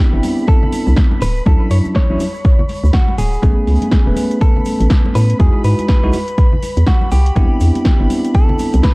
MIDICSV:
0, 0, Header, 1, 6, 480
1, 0, Start_track
1, 0, Key_signature, 3, "major"
1, 0, Tempo, 491803
1, 1428, Time_signature, 4, 2, 24, 8
1, 8726, End_track
2, 0, Start_track
2, 0, Title_t, "String machine"
2, 0, Program_c, 0, 50
2, 0, Note_on_c, 0, 83, 82
2, 3339, Note_off_c, 0, 83, 0
2, 3351, Note_on_c, 0, 83, 82
2, 8726, Note_off_c, 0, 83, 0
2, 8726, End_track
3, 0, Start_track
3, 0, Title_t, "Clean electric guitar"
3, 0, Program_c, 1, 27
3, 0, Note_on_c, 1, 67, 93
3, 464, Note_off_c, 1, 67, 0
3, 468, Note_on_c, 1, 69, 85
3, 915, Note_off_c, 1, 69, 0
3, 1190, Note_on_c, 1, 71, 98
3, 1424, Note_off_c, 1, 71, 0
3, 1428, Note_on_c, 1, 69, 105
3, 1651, Note_off_c, 1, 69, 0
3, 1668, Note_on_c, 1, 73, 104
3, 1732, Note_off_c, 1, 73, 0
3, 1909, Note_on_c, 1, 73, 101
3, 2863, Note_off_c, 1, 73, 0
3, 2867, Note_on_c, 1, 66, 86
3, 3103, Note_off_c, 1, 66, 0
3, 3107, Note_on_c, 1, 68, 95
3, 4269, Note_off_c, 1, 68, 0
3, 4308, Note_on_c, 1, 69, 84
3, 4754, Note_off_c, 1, 69, 0
3, 5028, Note_on_c, 1, 71, 86
3, 5265, Note_off_c, 1, 71, 0
3, 5269, Note_on_c, 1, 68, 93
3, 5506, Note_off_c, 1, 68, 0
3, 5510, Note_on_c, 1, 71, 91
3, 5737, Note_off_c, 1, 71, 0
3, 5748, Note_on_c, 1, 71, 93
3, 6669, Note_off_c, 1, 71, 0
3, 6709, Note_on_c, 1, 66, 85
3, 6944, Note_off_c, 1, 66, 0
3, 6948, Note_on_c, 1, 67, 94
3, 8109, Note_off_c, 1, 67, 0
3, 8149, Note_on_c, 1, 69, 101
3, 8595, Note_off_c, 1, 69, 0
3, 8629, Note_on_c, 1, 71, 101
3, 8694, Note_off_c, 1, 71, 0
3, 8726, End_track
4, 0, Start_track
4, 0, Title_t, "Tine electric piano"
4, 0, Program_c, 2, 4
4, 0, Note_on_c, 2, 64, 93
4, 99, Note_off_c, 2, 64, 0
4, 124, Note_on_c, 2, 59, 73
4, 128, Note_on_c, 2, 60, 66
4, 132, Note_on_c, 2, 62, 69
4, 135, Note_on_c, 2, 64, 81
4, 1173, Note_off_c, 2, 59, 0
4, 1175, Note_off_c, 2, 60, 0
4, 1177, Note_off_c, 2, 62, 0
4, 1179, Note_off_c, 2, 64, 0
4, 1422, Note_on_c, 2, 54, 75
4, 1426, Note_on_c, 2, 61, 66
4, 1430, Note_on_c, 2, 62, 66
4, 1434, Note_on_c, 2, 64, 78
4, 2013, Note_off_c, 2, 54, 0
4, 2015, Note_off_c, 2, 61, 0
4, 2017, Note_off_c, 2, 62, 0
4, 2019, Note_off_c, 2, 64, 0
4, 2046, Note_on_c, 2, 54, 85
4, 2048, Note_on_c, 2, 61, 79
4, 2050, Note_on_c, 2, 62, 79
4, 2052, Note_on_c, 2, 64, 98
4, 2170, Note_off_c, 2, 54, 0
4, 2171, Note_off_c, 2, 61, 0
4, 2172, Note_off_c, 2, 62, 0
4, 2173, Note_off_c, 2, 64, 0
4, 3342, Note_on_c, 2, 57, 83
4, 3345, Note_on_c, 2, 59, 77
4, 3350, Note_on_c, 2, 61, 74
4, 3354, Note_on_c, 2, 68, 89
4, 3933, Note_off_c, 2, 57, 0
4, 3935, Note_off_c, 2, 59, 0
4, 3937, Note_off_c, 2, 61, 0
4, 3939, Note_off_c, 2, 68, 0
4, 3964, Note_on_c, 2, 57, 73
4, 3968, Note_on_c, 2, 59, 67
4, 3972, Note_on_c, 2, 61, 70
4, 3976, Note_on_c, 2, 71, 81
4, 5242, Note_off_c, 2, 57, 0
4, 5244, Note_off_c, 2, 59, 0
4, 5246, Note_off_c, 2, 61, 0
4, 5248, Note_off_c, 2, 71, 0
4, 5262, Note_on_c, 2, 56, 74
4, 5266, Note_on_c, 2, 63, 66
4, 5270, Note_on_c, 2, 64, 66
4, 5274, Note_on_c, 2, 66, 78
4, 5853, Note_off_c, 2, 56, 0
4, 5855, Note_off_c, 2, 63, 0
4, 5857, Note_off_c, 2, 64, 0
4, 5859, Note_off_c, 2, 66, 0
4, 5887, Note_on_c, 2, 56, 86
4, 5889, Note_on_c, 2, 63, 83
4, 5891, Note_on_c, 2, 64, 81
4, 5892, Note_on_c, 2, 66, 94
4, 6011, Note_off_c, 2, 56, 0
4, 6011, Note_off_c, 2, 63, 0
4, 6012, Note_off_c, 2, 64, 0
4, 6013, Note_off_c, 2, 66, 0
4, 7181, Note_on_c, 2, 59, 81
4, 7185, Note_on_c, 2, 60, 75
4, 7189, Note_on_c, 2, 62, 76
4, 7194, Note_on_c, 2, 64, 92
4, 7772, Note_off_c, 2, 59, 0
4, 7774, Note_off_c, 2, 60, 0
4, 7776, Note_off_c, 2, 62, 0
4, 7779, Note_off_c, 2, 64, 0
4, 7803, Note_on_c, 2, 59, 74
4, 7807, Note_on_c, 2, 60, 68
4, 7811, Note_on_c, 2, 62, 68
4, 7815, Note_on_c, 2, 64, 83
4, 8726, Note_off_c, 2, 59, 0
4, 8726, Note_off_c, 2, 60, 0
4, 8726, Note_off_c, 2, 62, 0
4, 8726, Note_off_c, 2, 64, 0
4, 8726, End_track
5, 0, Start_track
5, 0, Title_t, "FM bass"
5, 0, Program_c, 3, 39
5, 128, Note_on_c, 3, 31, 84
5, 201, Note_off_c, 3, 31, 0
5, 850, Note_on_c, 3, 36, 103
5, 922, Note_off_c, 3, 36, 0
5, 1186, Note_on_c, 3, 26, 98
5, 1375, Note_off_c, 3, 26, 0
5, 1427, Note_on_c, 3, 38, 104
5, 1532, Note_off_c, 3, 38, 0
5, 1664, Note_on_c, 3, 42, 79
5, 1771, Note_off_c, 3, 42, 0
5, 2049, Note_on_c, 3, 33, 86
5, 2122, Note_off_c, 3, 33, 0
5, 2768, Note_on_c, 3, 38, 86
5, 2841, Note_off_c, 3, 38, 0
5, 3107, Note_on_c, 3, 26, 91
5, 3295, Note_off_c, 3, 26, 0
5, 3348, Note_on_c, 3, 33, 100
5, 3452, Note_off_c, 3, 33, 0
5, 3586, Note_on_c, 3, 37, 81
5, 3691, Note_off_c, 3, 37, 0
5, 3968, Note_on_c, 3, 28, 86
5, 4041, Note_off_c, 3, 28, 0
5, 4689, Note_on_c, 3, 33, 100
5, 4762, Note_off_c, 3, 33, 0
5, 5027, Note_on_c, 3, 45, 98
5, 5216, Note_off_c, 3, 45, 0
5, 5269, Note_on_c, 3, 40, 104
5, 5373, Note_off_c, 3, 40, 0
5, 5508, Note_on_c, 3, 44, 82
5, 5612, Note_off_c, 3, 44, 0
5, 5890, Note_on_c, 3, 35, 85
5, 5962, Note_off_c, 3, 35, 0
5, 6609, Note_on_c, 3, 40, 89
5, 6682, Note_off_c, 3, 40, 0
5, 6949, Note_on_c, 3, 36, 92
5, 7136, Note_off_c, 3, 36, 0
5, 7187, Note_on_c, 3, 36, 102
5, 7292, Note_off_c, 3, 36, 0
5, 7428, Note_on_c, 3, 40, 82
5, 7532, Note_off_c, 3, 40, 0
5, 7808, Note_on_c, 3, 31, 90
5, 7881, Note_off_c, 3, 31, 0
5, 8530, Note_on_c, 3, 36, 102
5, 8602, Note_off_c, 3, 36, 0
5, 8726, End_track
6, 0, Start_track
6, 0, Title_t, "Drums"
6, 0, Note_on_c, 9, 82, 41
6, 93, Note_off_c, 9, 82, 0
6, 226, Note_on_c, 9, 46, 110
6, 231, Note_on_c, 9, 82, 90
6, 238, Note_on_c, 9, 63, 85
6, 324, Note_off_c, 9, 46, 0
6, 328, Note_off_c, 9, 82, 0
6, 335, Note_off_c, 9, 63, 0
6, 370, Note_on_c, 9, 82, 52
6, 467, Note_off_c, 9, 82, 0
6, 467, Note_on_c, 9, 36, 124
6, 471, Note_on_c, 9, 82, 36
6, 565, Note_off_c, 9, 36, 0
6, 568, Note_off_c, 9, 82, 0
6, 611, Note_on_c, 9, 64, 88
6, 706, Note_on_c, 9, 46, 108
6, 706, Note_on_c, 9, 63, 65
6, 709, Note_off_c, 9, 64, 0
6, 712, Note_on_c, 9, 82, 86
6, 803, Note_off_c, 9, 63, 0
6, 804, Note_off_c, 9, 46, 0
6, 810, Note_off_c, 9, 82, 0
6, 849, Note_on_c, 9, 82, 60
6, 941, Note_on_c, 9, 38, 117
6, 944, Note_off_c, 9, 82, 0
6, 944, Note_on_c, 9, 82, 39
6, 947, Note_on_c, 9, 64, 82
6, 948, Note_on_c, 9, 36, 122
6, 1039, Note_off_c, 9, 38, 0
6, 1042, Note_off_c, 9, 82, 0
6, 1045, Note_off_c, 9, 36, 0
6, 1045, Note_off_c, 9, 64, 0
6, 1086, Note_on_c, 9, 63, 91
6, 1184, Note_off_c, 9, 63, 0
6, 1187, Note_on_c, 9, 46, 104
6, 1188, Note_on_c, 9, 82, 92
6, 1285, Note_off_c, 9, 46, 0
6, 1285, Note_off_c, 9, 82, 0
6, 1327, Note_on_c, 9, 82, 47
6, 1423, Note_off_c, 9, 82, 0
6, 1423, Note_on_c, 9, 82, 38
6, 1425, Note_on_c, 9, 63, 99
6, 1427, Note_on_c, 9, 36, 124
6, 1521, Note_off_c, 9, 82, 0
6, 1523, Note_off_c, 9, 63, 0
6, 1525, Note_off_c, 9, 36, 0
6, 1665, Note_on_c, 9, 82, 80
6, 1667, Note_on_c, 9, 46, 107
6, 1763, Note_off_c, 9, 82, 0
6, 1765, Note_off_c, 9, 46, 0
6, 1802, Note_on_c, 9, 82, 52
6, 1815, Note_on_c, 9, 63, 66
6, 1900, Note_off_c, 9, 82, 0
6, 1901, Note_on_c, 9, 38, 107
6, 1908, Note_on_c, 9, 36, 116
6, 1913, Note_off_c, 9, 63, 0
6, 1913, Note_on_c, 9, 82, 38
6, 1999, Note_off_c, 9, 38, 0
6, 2005, Note_off_c, 9, 36, 0
6, 2010, Note_off_c, 9, 82, 0
6, 2146, Note_on_c, 9, 82, 94
6, 2147, Note_on_c, 9, 46, 109
6, 2147, Note_on_c, 9, 63, 85
6, 2243, Note_off_c, 9, 82, 0
6, 2245, Note_off_c, 9, 46, 0
6, 2245, Note_off_c, 9, 63, 0
6, 2285, Note_on_c, 9, 82, 52
6, 2383, Note_off_c, 9, 82, 0
6, 2384, Note_on_c, 9, 82, 42
6, 2388, Note_on_c, 9, 36, 116
6, 2482, Note_off_c, 9, 82, 0
6, 2486, Note_off_c, 9, 36, 0
6, 2529, Note_on_c, 9, 64, 85
6, 2624, Note_on_c, 9, 82, 98
6, 2626, Note_off_c, 9, 64, 0
6, 2627, Note_on_c, 9, 46, 104
6, 2630, Note_on_c, 9, 63, 64
6, 2722, Note_off_c, 9, 82, 0
6, 2725, Note_off_c, 9, 46, 0
6, 2728, Note_off_c, 9, 63, 0
6, 2777, Note_on_c, 9, 82, 58
6, 2860, Note_off_c, 9, 82, 0
6, 2860, Note_on_c, 9, 82, 38
6, 2862, Note_on_c, 9, 38, 111
6, 2865, Note_on_c, 9, 64, 81
6, 2868, Note_on_c, 9, 36, 122
6, 2958, Note_off_c, 9, 82, 0
6, 2960, Note_off_c, 9, 38, 0
6, 2963, Note_off_c, 9, 64, 0
6, 2965, Note_off_c, 9, 36, 0
6, 3011, Note_on_c, 9, 63, 85
6, 3108, Note_on_c, 9, 46, 104
6, 3109, Note_off_c, 9, 63, 0
6, 3111, Note_on_c, 9, 82, 98
6, 3206, Note_off_c, 9, 46, 0
6, 3208, Note_off_c, 9, 82, 0
6, 3252, Note_on_c, 9, 82, 53
6, 3348, Note_on_c, 9, 36, 116
6, 3348, Note_on_c, 9, 42, 51
6, 3349, Note_off_c, 9, 82, 0
6, 3350, Note_on_c, 9, 63, 92
6, 3352, Note_on_c, 9, 82, 40
6, 3445, Note_off_c, 9, 42, 0
6, 3446, Note_off_c, 9, 36, 0
6, 3448, Note_off_c, 9, 63, 0
6, 3449, Note_off_c, 9, 82, 0
6, 3587, Note_on_c, 9, 46, 98
6, 3589, Note_on_c, 9, 82, 92
6, 3685, Note_off_c, 9, 46, 0
6, 3687, Note_off_c, 9, 82, 0
6, 3723, Note_on_c, 9, 82, 48
6, 3729, Note_on_c, 9, 42, 62
6, 3729, Note_on_c, 9, 63, 65
6, 3821, Note_off_c, 9, 82, 0
6, 3823, Note_on_c, 9, 38, 109
6, 3825, Note_on_c, 9, 82, 40
6, 3826, Note_off_c, 9, 63, 0
6, 3827, Note_off_c, 9, 42, 0
6, 3828, Note_on_c, 9, 36, 117
6, 3828, Note_on_c, 9, 42, 47
6, 3920, Note_off_c, 9, 38, 0
6, 3922, Note_off_c, 9, 82, 0
6, 3925, Note_off_c, 9, 36, 0
6, 3925, Note_off_c, 9, 42, 0
6, 4064, Note_on_c, 9, 63, 86
6, 4067, Note_on_c, 9, 46, 104
6, 4067, Note_on_c, 9, 82, 96
6, 4162, Note_off_c, 9, 63, 0
6, 4164, Note_off_c, 9, 46, 0
6, 4164, Note_off_c, 9, 82, 0
6, 4208, Note_on_c, 9, 82, 46
6, 4209, Note_on_c, 9, 42, 59
6, 4305, Note_off_c, 9, 82, 0
6, 4306, Note_off_c, 9, 42, 0
6, 4308, Note_on_c, 9, 36, 116
6, 4308, Note_on_c, 9, 42, 48
6, 4309, Note_on_c, 9, 82, 41
6, 4405, Note_off_c, 9, 42, 0
6, 4406, Note_off_c, 9, 36, 0
6, 4407, Note_off_c, 9, 82, 0
6, 4456, Note_on_c, 9, 64, 76
6, 4543, Note_on_c, 9, 82, 87
6, 4547, Note_on_c, 9, 46, 100
6, 4548, Note_on_c, 9, 63, 58
6, 4553, Note_off_c, 9, 64, 0
6, 4640, Note_off_c, 9, 82, 0
6, 4645, Note_off_c, 9, 46, 0
6, 4646, Note_off_c, 9, 63, 0
6, 4689, Note_on_c, 9, 82, 50
6, 4690, Note_on_c, 9, 42, 62
6, 4782, Note_on_c, 9, 38, 116
6, 4786, Note_off_c, 9, 82, 0
6, 4787, Note_off_c, 9, 42, 0
6, 4788, Note_on_c, 9, 36, 118
6, 4788, Note_on_c, 9, 42, 50
6, 4789, Note_on_c, 9, 64, 73
6, 4792, Note_on_c, 9, 82, 37
6, 4880, Note_off_c, 9, 38, 0
6, 4885, Note_off_c, 9, 42, 0
6, 4886, Note_off_c, 9, 36, 0
6, 4887, Note_off_c, 9, 64, 0
6, 4890, Note_off_c, 9, 82, 0
6, 4934, Note_on_c, 9, 63, 87
6, 5027, Note_on_c, 9, 46, 99
6, 5031, Note_off_c, 9, 63, 0
6, 5039, Note_on_c, 9, 82, 98
6, 5125, Note_off_c, 9, 46, 0
6, 5137, Note_off_c, 9, 82, 0
6, 5170, Note_on_c, 9, 42, 60
6, 5175, Note_on_c, 9, 82, 48
6, 5267, Note_off_c, 9, 42, 0
6, 5267, Note_on_c, 9, 42, 52
6, 5268, Note_on_c, 9, 36, 114
6, 5271, Note_off_c, 9, 82, 0
6, 5271, Note_on_c, 9, 82, 35
6, 5278, Note_on_c, 9, 63, 83
6, 5365, Note_off_c, 9, 42, 0
6, 5366, Note_off_c, 9, 36, 0
6, 5368, Note_off_c, 9, 82, 0
6, 5375, Note_off_c, 9, 63, 0
6, 5505, Note_on_c, 9, 82, 77
6, 5507, Note_on_c, 9, 46, 99
6, 5603, Note_off_c, 9, 82, 0
6, 5605, Note_off_c, 9, 46, 0
6, 5650, Note_on_c, 9, 42, 67
6, 5651, Note_on_c, 9, 82, 44
6, 5654, Note_on_c, 9, 63, 63
6, 5743, Note_on_c, 9, 38, 106
6, 5746, Note_off_c, 9, 82, 0
6, 5746, Note_on_c, 9, 82, 40
6, 5748, Note_off_c, 9, 42, 0
6, 5748, Note_on_c, 9, 36, 109
6, 5748, Note_on_c, 9, 42, 50
6, 5751, Note_off_c, 9, 63, 0
6, 5840, Note_off_c, 9, 38, 0
6, 5843, Note_off_c, 9, 82, 0
6, 5845, Note_off_c, 9, 36, 0
6, 5846, Note_off_c, 9, 42, 0
6, 5979, Note_on_c, 9, 82, 87
6, 5987, Note_on_c, 9, 46, 101
6, 5996, Note_on_c, 9, 63, 86
6, 6076, Note_off_c, 9, 82, 0
6, 6085, Note_off_c, 9, 46, 0
6, 6093, Note_off_c, 9, 63, 0
6, 6129, Note_on_c, 9, 42, 63
6, 6133, Note_on_c, 9, 82, 52
6, 6226, Note_off_c, 9, 82, 0
6, 6226, Note_on_c, 9, 82, 36
6, 6227, Note_off_c, 9, 42, 0
6, 6228, Note_on_c, 9, 36, 113
6, 6228, Note_on_c, 9, 42, 52
6, 6324, Note_off_c, 9, 82, 0
6, 6325, Note_off_c, 9, 36, 0
6, 6325, Note_off_c, 9, 42, 0
6, 6370, Note_on_c, 9, 64, 85
6, 6467, Note_off_c, 9, 64, 0
6, 6467, Note_on_c, 9, 46, 94
6, 6473, Note_on_c, 9, 63, 60
6, 6475, Note_on_c, 9, 82, 82
6, 6565, Note_off_c, 9, 46, 0
6, 6570, Note_off_c, 9, 63, 0
6, 6573, Note_off_c, 9, 82, 0
6, 6605, Note_on_c, 9, 82, 52
6, 6609, Note_on_c, 9, 42, 62
6, 6702, Note_on_c, 9, 38, 109
6, 6703, Note_off_c, 9, 82, 0
6, 6706, Note_on_c, 9, 64, 76
6, 6707, Note_off_c, 9, 42, 0
6, 6707, Note_on_c, 9, 36, 117
6, 6707, Note_on_c, 9, 42, 51
6, 6711, Note_on_c, 9, 82, 34
6, 6799, Note_off_c, 9, 38, 0
6, 6804, Note_off_c, 9, 64, 0
6, 6805, Note_off_c, 9, 36, 0
6, 6805, Note_off_c, 9, 42, 0
6, 6809, Note_off_c, 9, 82, 0
6, 6848, Note_on_c, 9, 63, 81
6, 6945, Note_on_c, 9, 82, 92
6, 6946, Note_off_c, 9, 63, 0
6, 6946, Note_on_c, 9, 46, 94
6, 7042, Note_off_c, 9, 82, 0
6, 7044, Note_off_c, 9, 46, 0
6, 7087, Note_on_c, 9, 82, 46
6, 7089, Note_on_c, 9, 42, 62
6, 7182, Note_off_c, 9, 82, 0
6, 7182, Note_on_c, 9, 82, 34
6, 7187, Note_off_c, 9, 42, 0
6, 7187, Note_on_c, 9, 36, 110
6, 7187, Note_on_c, 9, 42, 53
6, 7187, Note_on_c, 9, 63, 82
6, 7280, Note_off_c, 9, 82, 0
6, 7285, Note_off_c, 9, 36, 0
6, 7285, Note_off_c, 9, 42, 0
6, 7285, Note_off_c, 9, 63, 0
6, 7423, Note_on_c, 9, 82, 88
6, 7426, Note_on_c, 9, 46, 99
6, 7521, Note_off_c, 9, 82, 0
6, 7524, Note_off_c, 9, 46, 0
6, 7568, Note_on_c, 9, 42, 67
6, 7570, Note_on_c, 9, 63, 61
6, 7570, Note_on_c, 9, 82, 44
6, 7662, Note_off_c, 9, 82, 0
6, 7662, Note_on_c, 9, 38, 113
6, 7662, Note_on_c, 9, 82, 35
6, 7666, Note_off_c, 9, 42, 0
6, 7667, Note_off_c, 9, 63, 0
6, 7667, Note_on_c, 9, 36, 114
6, 7667, Note_on_c, 9, 42, 53
6, 7759, Note_off_c, 9, 38, 0
6, 7760, Note_off_c, 9, 82, 0
6, 7764, Note_off_c, 9, 36, 0
6, 7765, Note_off_c, 9, 42, 0
6, 7905, Note_on_c, 9, 63, 76
6, 7907, Note_on_c, 9, 46, 100
6, 7910, Note_on_c, 9, 82, 81
6, 8003, Note_off_c, 9, 63, 0
6, 8004, Note_off_c, 9, 46, 0
6, 8008, Note_off_c, 9, 82, 0
6, 8048, Note_on_c, 9, 42, 67
6, 8051, Note_on_c, 9, 82, 51
6, 8146, Note_off_c, 9, 42, 0
6, 8146, Note_on_c, 9, 42, 56
6, 8147, Note_on_c, 9, 36, 113
6, 8149, Note_off_c, 9, 82, 0
6, 8151, Note_on_c, 9, 82, 34
6, 8243, Note_off_c, 9, 42, 0
6, 8244, Note_off_c, 9, 36, 0
6, 8249, Note_off_c, 9, 82, 0
6, 8289, Note_on_c, 9, 64, 89
6, 8382, Note_on_c, 9, 82, 79
6, 8386, Note_on_c, 9, 46, 99
6, 8387, Note_off_c, 9, 64, 0
6, 8390, Note_on_c, 9, 63, 65
6, 8480, Note_off_c, 9, 82, 0
6, 8484, Note_off_c, 9, 46, 0
6, 8488, Note_off_c, 9, 63, 0
6, 8523, Note_on_c, 9, 82, 54
6, 8528, Note_on_c, 9, 42, 67
6, 8621, Note_off_c, 9, 82, 0
6, 8621, Note_on_c, 9, 38, 113
6, 8626, Note_off_c, 9, 42, 0
6, 8626, Note_on_c, 9, 42, 55
6, 8626, Note_on_c, 9, 82, 39
6, 8627, Note_on_c, 9, 36, 114
6, 8627, Note_on_c, 9, 64, 74
6, 8718, Note_off_c, 9, 38, 0
6, 8724, Note_off_c, 9, 36, 0
6, 8724, Note_off_c, 9, 42, 0
6, 8724, Note_off_c, 9, 82, 0
6, 8725, Note_off_c, 9, 64, 0
6, 8726, End_track
0, 0, End_of_file